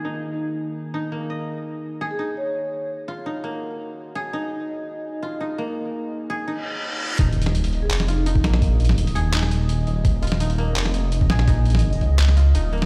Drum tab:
HH |--------------------------------|--------------------------------|--------------------------------|--------------------------------|
CP |--------------------------------|--------------------------------|--------------------------------|--------------------------------|
SD |--------------------------------|--------------------------------|--------------------------------|--------------------------------|
BD |--------------------------------|--------------------------------|--------------------------------|--------------------------------|

HH |--------------------------------|x--x-x--x-o-o---x---x---x---x---|x---xx--x-o-x---x---x---x---x---|x---xx--x-o-o---x---x---x---x---|
CP |--------------------------------|----------------x---------------|----------------x---------------|----------------x---------------|
SD |--------------------------------|------o-----------o---------o-o-|------o-----------o-------------|------o-----------o---------o-o-|
BD |--------------------------------|o-------------------------o-----|o-------------------------------|o-------------------------o-----|

HH |x---xx-x--o-o---x---x---x---xxx-|
CP |----------------x---------------|
SD |------o-----------o-----------o-|
BD |o-----------o-------------------|